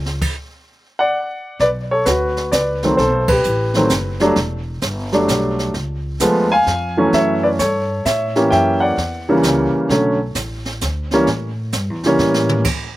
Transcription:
0.00 0.20 C#2 medium
0.06 snare soft
0.21 kick medium
0.21 crash medium
0.99 1.58 D5 medium
0.99 1.57 F#5 medium
1.59 2.05 B1 medium
1.59 1.69 B4 medium
1.59 1.67 D5 medium
1.59 brush sweep soft
1.59 kick soft
1.59 snare soft
1.91 2.06 A4 medium
1.91 2.07 C#5 medium
2.05 2.51 D2 medium
2.05 2.50 F#4 medium
2.05 2.53 B4 medium
2.05 kick soft
2.05 snare medium
2.05 hi-hat pedal medium
2.37 snare soft
2.52 2.97 C#2 medium
2.52 2.97 B4 medium
2.52 2.95 D5 medium
2.52 kick soft
2.52 snare medium
2.52 hi-hat pedal medium
2.83 2.98 D#3 medium
2.83 2.98 F#3 medium
2.83 2.98 A3 medium
2.83 2.98 C4 medium
2.83 snare soft
2.97 3.43 B1 medium
2.97 3.27 A4 medium
2.97 3.29 C5 medium
2.97 brush sweep soft
2.97 kick soft
2.97 snare soft
3.28 4.18 G4 medium
3.28 4.17 B4 medium
3.28 kick medium
3.28 crash medium
3.44 3.90 A1 medium
3.44 hi-hat pedal medium
3.74 3.90 D#3 medium
3.74 3.90 F#3 medium
3.74 3.90 A3 medium
3.74 3.90 C4 medium
3.74 snare soft
3.89 4.35 F#1 medium
3.89 kick soft
3.89 snare medium
3.89 hi-hat pedal medium
4.20 4.35 F#3 medium
4.20 4.36 G3 medium
4.20 4.36 A3 medium
4.20 4.36 D4 medium
4.20 snare soft
4.36 4.81 E1 medium
4.36 brush sweep soft
4.36 kick soft
4.36 snare soft
4.81 5.27 G1 medium
4.81 kick soft
4.81 snare medium
4.81 hi-hat pedal medium
5.12 5.72 F#3 medium
5.12 5.72 G3 medium
5.12 5.72 A3 medium
5.12 5.73 D4 medium
5.12 snare soft
5.28 5.73 B1 medium
5.28 kick soft
5.28 snare medium
5.28 hi-hat pedal medium
5.59 snare soft
5.74 6.19 C#2 medium
5.74 brush sweep soft
5.74 kick soft
5.74 snare soft
6.20 6.66 D#2 medium
6.20 6.48 F3 medium
6.20 6.48 G#3 medium
6.20 6.48 A3 medium
6.20 6.48 B3 medium
6.20 kick soft
6.20 snare medium
6.20 hi-hat pedal medium
6.52 7.10 F5 medium
6.52 7.10 G#5 loud
6.67 7.12 F2 medium
6.67 kick soft
6.67 snare soft
6.97 7.56 E3 medium
6.97 7.57 F#3 medium
6.97 7.57 A3 medium
6.97 7.57 C#4 medium
7.13 7.58 F#2 medium
7.13 7.42 C#5 medium
7.13 7.45 E5 medium
7.13 brush sweep medium
7.13 kick soft
7.13 snare soft
7.43 7.49 B4 medium
7.43 7.48 D5 medium
7.59 8.04 G2 medium
7.59 8.03 A4 medium
7.59 8.02 C#5 medium
7.59 kick soft
7.59 snare medium
7.59 hi-hat pedal medium
8.05 8.50 A2 medium
8.05 8.49 C#5 medium
8.05 8.48 E5 medium
8.05 kick soft
8.05 snare medium
8.05 hi-hat pedal medium
8.35 8.94 E3 medium
8.35 8.95 A#3 medium
8.35 8.95 C#4 medium
8.35 8.95 G4 medium
8.35 snare soft
8.50 8.96 F#2 medium
8.50 8.80 E5 medium
8.50 8.82 G5 medium
8.50 brush sweep soft
8.50 kick soft
8.50 snare soft
8.80 9.70 D5 medium
8.80 9.69 F#5 medium
8.97 9.42 E2 medium
8.97 kick soft
8.97 snare soft
9.29 9.87 C#3 medium
9.29 9.87 E3 medium
9.29 9.87 G3 medium
9.29 9.87 A#3 medium
9.43 9.72 C#2 medium
9.43 kick soft
9.43 snare medium
9.43 hi-hat pedal medium
9.73 muted upright bass stroke soft
9.89 10.34 B1 medium
9.89 10.16 D3 medium
9.89 10.17 F#3 medium
9.89 10.17 A3 medium
9.89 10.17 C#4 medium
9.89 brush sweep soft
9.89 kick soft
9.89 snare soft
10.35 10.80 A1 medium
10.35 kick soft
10.35 snare medium
10.35 hi-hat pedal medium
10.65 snare soft
10.81 11.26 D2 medium
10.81 kick soft
10.81 snare medium
10.81 hi-hat pedal medium
11.11 11.27 E3 medium
11.11 11.27 G3 medium
11.11 11.27 A#3 medium
11.11 11.27 C#4 medium
11.11 snare soft
11.27 11.72 A2 medium
11.27 brush sweep soft
11.27 kick soft
11.27 snare soft
11.72 11.90 G2 medium
11.72 kick soft
11.72 snare medium
11.72 hi-hat pedal medium
11.90 12.04 E2 soft
12.03 12.18 C#2 medium
12.03 12.63 E3 medium
12.03 12.63 G3 medium
12.03 12.63 A#3 medium
12.03 12.63 C#4 medium
12.03 snare soft
12.19 12.63 A2 medium
12.19 snare soft
12.34 snare medium
12.49 mid tom medium
12.65 brush sweep soft
12.65 kick medium
12.65 snare soft
12.65 crash medium

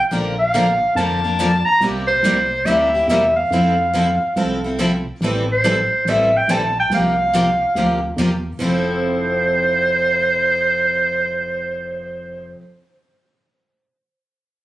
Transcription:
0.11 0.79 A#1 medium
0.11 0.33 D3 medium
0.11 0.33 F3 medium
0.11 0.33 A#3 medium
0.11 0.34 D4 medium
0.11 0.34 A#4 medium
0.39 0.92 F5 medium
0.54 0.65 D3 medium
0.54 0.66 F3 medium
0.54 0.65 A#3 medium
0.54 0.66 D4 medium
0.54 0.66 A#4 medium
0.95 1.64 F2 medium
0.95 1.18 D3 medium
0.95 1.19 F3 medium
0.95 1.19 A#3 medium
0.95 1.19 D4 medium
0.95 1.19 A#4 medium
0.95 1.67 A5 medium
1.24 1.39 A#3 medium
1.24 1.39 D4 soft
1.24 1.38 A#4 medium
1.40 1.51 D3 medium
1.40 1.51 F3 medium
1.40 1.51 A#3 medium
1.40 1.51 D4 medium
1.40 1.51 A#4 medium
1.65 1.81 A#5 loud
1.81 2.15 C2 medium
1.81 2.03 C3 medium
1.81 2.04 G3 medium
1.81 2.04 A#3 medium
1.81 2.04 E4 medium
1.81 2.04 G4 medium
2.07 2.67 C5 medium
2.23 2.59 C2 medium
2.23 2.35 C3 medium
2.23 2.36 G3 medium
2.23 2.36 A#3 medium
2.23 2.36 E4 medium
2.23 2.36 G4 medium
2.65 3.02 D2 medium
2.65 2.88 C3 medium
2.65 2.88 G3 medium
2.65 2.88 A#3 medium
2.65 2.88 E4 medium
2.65 2.88 G4 medium
2.65 3.08 E5 medium
2.94 3.10 A#3 soft
2.94 3.09 E4 medium
2.94 3.08 G4 medium
3.07 3.44 E2 medium
3.07 3.21 C3 medium
3.07 3.21 G3 medium
3.07 3.21 A#3 medium
3.07 3.21 E4 medium
3.07 3.21 G4 medium
3.07 3.34 E5 medium
3.36 4.75 F5 medium
3.51 4.19 F2 medium
3.51 3.73 F3 medium
3.51 3.74 C4 medium
3.51 3.74 E4 medium
3.51 3.74 A4 medium
3.94 4.05 F3 medium
3.94 4.05 C4 medium
3.94 4.06 E4 medium
3.94 4.06 A4 medium
4.36 5.04 C2 medium
4.36 4.58 F3 medium
4.36 4.58 C4 medium
4.36 4.58 E4 medium
4.36 4.59 A4 medium
4.64 4.78 C4 soft
4.64 4.79 E4 soft
4.64 4.78 A4 medium
4.79 4.90 F3 medium
4.79 4.90 C4 medium
4.79 4.91 E4 medium
4.79 4.91 A4 medium
5.21 5.89 A1 medium
5.21 5.43 E3 medium
5.21 5.43 G3 medium
5.21 5.44 C4 medium
5.21 5.44 E4 medium
5.21 5.44 A4 medium
5.52 6.11 C5 medium
5.64 5.75 E3 medium
5.64 5.75 G3 medium
5.64 5.76 C4 medium
5.64 5.76 E4 medium
5.64 5.76 A4 medium
6.05 6.41 A1 medium
6.05 6.28 E3 medium
6.05 6.28 G3 medium
6.05 6.29 C4 medium
6.05 6.29 E4 medium
6.05 6.29 A4 medium
6.09 6.38 E5 medium
6.37 6.53 G5 medium
6.48 6.84 A#1 medium
6.48 6.60 E3 medium
6.48 6.60 G3 medium
6.48 6.61 C4 medium
6.48 6.61 E4 medium
6.48 6.61 A4 medium
6.48 6.76 A5 medium
6.80 6.92 G5 medium
6.90 7.58 C2 medium
6.90 7.13 C3 medium
6.90 7.13 F3 medium
6.90 7.13 A#3 medium
6.90 7.13 F4 medium
6.90 7.13 G4 medium
6.94 8.15 F5 medium
7.33 7.45 C3 medium
7.33 7.45 F3 medium
7.33 7.45 A#3 medium
7.33 7.45 F4 medium
7.33 7.45 G4 medium
7.75 8.11 D2 medium
7.75 7.97 C3 medium
7.75 7.97 F3 medium
7.75 7.97 A#3 medium
7.75 7.98 F4 medium
7.75 7.98 G4 medium
8.17 8.53 E2 medium
8.17 8.29 C3 medium
8.17 8.29 F3 medium
8.17 8.30 A#3 medium
8.17 8.30 F4 medium
8.17 8.30 G4 medium
8.59 12.55 F1 medium
8.59 12.60 F3 medium
8.59 12.62 C4 medium
8.59 12.58 C5 medium
8.63 12.63 E4 medium
8.63 12.64 A4 medium

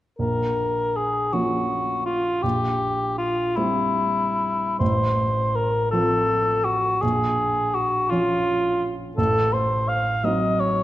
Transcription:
0.19 1.30 A#1 soft
0.19 0.98 A#4 soft
0.96 1.35 G#4 soft
1.33 2.40 F3 soft
1.33 2.40 A#3 soft
1.33 2.40 C#4 soft
1.33 2.05 F#4 soft
2.05 2.44 F4 soft
2.42 3.53 A#1 soft
2.42 3.17 G4 medium
3.18 3.58 F4 soft
3.56 4.77 G3 soft
3.56 4.77 C4 soft
3.56 4.78 E4 medium
4.79 5.89 A1 soft
4.79 5.57 C5 medium
5.55 5.90 A#4 medium
5.91 6.98 F3 soft
5.91 6.99 C4 soft
5.91 6.99 F4 soft
5.91 6.66 A4 medium
6.65 7.03 F#4 medium
7.01 8.08 A#1 soft
7.01 7.76 G#4 medium
7.74 8.11 F#4 medium
8.09 9.14 F3 soft
8.09 9.15 C#4 soft
8.09 8.91 F4 medium
8.09 9.15 F4 soft
9.16 10.21 A1 soft
9.16 9.54 A4 medium
9.53 9.90 C5 medium
9.88 10.26 F5 medium
10.24 10.83 F#3 soft
10.24 10.83 C4 soft
10.24 10.83 D#4 soft
10.24 10.61 D#5 medium
10.60 10.83 C#5 medium

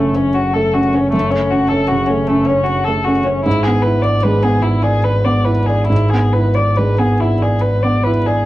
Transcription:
0.00 3.48 F#1 soft
0.00 1.09 F#2 soft
0.00 1.16 C#3 soft
0.00 0.16 A3 soft
0.00 0.55 A3 soft
0.00 0.74 C#4 soft
0.00 0.16 C#5 soft
0.14 0.36 C#4 soft
0.14 0.79 C#5 soft
0.34 0.55 F#4 soft
0.53 0.87 A3 soft
0.53 0.75 A4 soft
0.73 1.06 C#4 soft
0.73 0.95 F#4 soft
0.93 1.11 C#4 soft
0.93 1.26 C#5 soft
1.12 3.41 F#2 soft
1.12 1.32 A3 soft
1.30 1.64 A3 soft
1.30 1.52 C#4 soft
1.50 1.83 C#4 soft
1.50 1.70 F#4 soft
1.69 1.89 A4 soft
1.69 2.02 C#5 soft
1.88 2.22 C#3 soft
1.88 2.08 F#4 soft
2.06 2.41 A3 soft
2.06 2.29 C#4 soft
2.27 2.47 A3 soft
2.27 2.60 C#4 soft
2.46 2.65 C#4 soft
2.50 3.11 C#5 soft
2.63 2.86 F#4 soft
2.84 3.19 A3 soft
2.84 3.06 A4 soft
3.04 3.38 C#4 soft
3.04 3.25 F#4 soft
3.24 3.44 C#4 soft
3.24 3.46 C#5 soft
3.45 8.46 G#1 soft
3.45 5.86 G#2 soft
3.45 3.65 E4 medium
3.63 3.98 B3 soft
3.63 3.84 G#4 soft
3.82 4.17 E4 soft
3.82 4.04 B4 soft
4.02 4.24 D5 soft
4.02 4.36 D5 soft
4.23 4.57 G#3 soft
4.23 4.44 B4 soft
4.43 4.77 B3 soft
4.43 4.63 G#4 soft
4.62 4.84 E4 soft
4.62 4.96 E4 soft
4.82 5.06 G#4 soft
4.82 5.51 D5 soft
5.04 5.26 B4 soft
5.25 5.60 B3 soft
5.25 5.46 D5 soft
5.45 5.81 E4 soft
5.45 5.68 B4 soft
5.66 5.87 G#4 soft
5.66 6.04 D5 soft
5.87 8.43 G#2 soft
5.87 6.11 E4 soft
6.10 6.48 B3 soft
6.10 6.35 G#4 soft
6.33 6.70 E4 soft
6.33 6.56 B4 soft
6.55 6.78 D5 soft
6.55 6.91 D5 soft
6.77 7.12 G#3 soft
6.77 7.00 B4 soft
6.99 7.33 B3 soft
6.99 7.22 G#4 soft
7.20 7.43 E4 soft
7.20 7.55 E4 soft
7.42 7.63 G#4 soft
7.42 8.10 D5 soft
7.61 7.84 B4 soft
7.83 8.18 B3 soft
7.83 8.05 D5 soft
8.03 8.40 E4 soft
8.03 8.28 B4 soft
8.27 8.46 G#4 soft
8.27 8.46 D5 soft

